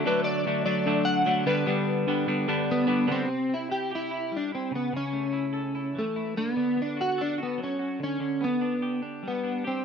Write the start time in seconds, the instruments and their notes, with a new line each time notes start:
0.05 overdriven electric guitar D3 F#3 A3 D4, clean electric guitar B4
0.24 clean electric guitar D5
0.46 overdriven electric guitar D3 F#3 A3 D4
0.65 overdriven electric guitar D3 F#3 A3 D4, clean electric guitar D5
0.86 overdriven electric guitar D3 F#3 A3 D4
1.05 clean electric guitar F#5
1.26 overdriven electric guitar D3 F#3 A3 D4
1.46 overdriven electric guitar D3 G3 B3 D4, clean electric guitar B4
1.66 overdriven electric guitar D3 G3 B3 D4
2.07 overdriven electric guitar D3 G3 B3 D4
2.27 overdriven electric guitar D3 G3 B3 D4
2.48 overdriven electric guitar D3 G3 B3 D4
2.71 clean electric guitar B3
2.87 overdriven electric guitar D3 G3 B3 D4
3.08 overdriven electric guitar D3 G3 B3 D4, clean electric guitar C4
3.28 overdriven electric guitar C3
3.49 overdriven electric guitar C4
3.54 clean electric guitar E4
3.69 overdriven electric guitar E4, clean electric guitar G4
3.91 overdriven electric guitar G4
3.95 clean electric guitar E4
4.11 overdriven electric guitar E4
4.32 overdriven electric guitar G3
4.37 clean electric guitar D4
4.52 clean electric guitar C4, overdriven electric guitar E4
4.72 overdriven electric guitar C#3, clean electric guitar B3
4.93 overdriven electric guitar C#3, clean electric guitar C#4
5.14 overdriven electric guitar A3
5.34 overdriven electric guitar E4
5.54 overdriven electric guitar A4
5.75 overdriven electric guitar E4
5.95 overdriven electric guitar E3, clean electric guitar A3
6.16 overdriven electric guitar E4
6.37 overdriven electric guitar D3, clean electric guitar B3
6.56 overdriven electric guitar D3
6.77 overdriven electric guitar B3
6.82 clean electric guitar D4
6.97 overdriven electric guitar F#4, clean electric guitar F#4
7.18 clean electric guitar D4, overdriven electric guitar A4
7.38 overdriven electric guitar F#4
7.43 clean electric guitar B3
7.58 overdriven electric guitar F#3
7.63 clean electric guitar C#4
7.79 overdriven electric guitar F#4
8.00 overdriven electric guitar D3, clean electric guitar C#4
8.20 overdriven electric guitar D3
8.41 overdriven electric guitar B3, clean electric guitar B3
8.61 overdriven electric guitar D4
8.82 overdriven electric guitar G4
9.02 overdriven electric guitar D4
9.23 overdriven electric guitar G3
9.28 clean electric guitar B3
9.44 overdriven electric guitar D4
9.64 clean electric guitar C4, overdriven electric guitar G4